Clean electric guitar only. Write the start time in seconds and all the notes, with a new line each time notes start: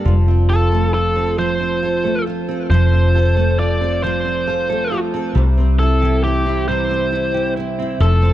Already playing: A#3 D4 A4
0.06 F3
0.28 C4
0.50 F4
0.72 A4
0.94 F4
1.16 C4
1.38 F3
1.60 C4
1.82 F4
2.04 A4
2.26 F4
2.49 C4
2.70 F3
2.92 C4
3.14 F4
3.37 A4
3.59 F4
3.81 C4
4.03 F3
4.25 C4
4.47 F4
4.70 A4
4.91 F4
5.14 C4
5.35 G3
5.58 C4
5.80 E4
6.02 G4
6.24 E4
6.46 C4
6.68 G3
6.90 C4
7.13 E4
7.34 G4
7.56 E4
7.79 C4
8.01 F3
8.23 C4